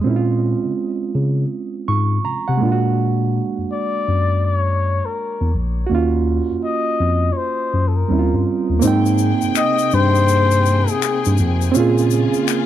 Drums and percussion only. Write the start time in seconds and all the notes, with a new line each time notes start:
8.82 shaker
9.06 shaker
9.18 shaker
9.41 shaker
9.55 finger snap, shaker
9.79 shaker
9.91 shaker
10.15 shaker
10.28 shaker
10.51 shaker
10.66 shaker
10.88 shaker
11.02 finger snap, shaker
11.25 shaker
11.38 shaker
11.61 shaker
11.75 shaker
11.98 shaker
12.11 shaker
12.34 shaker
12.48 finger snap, shaker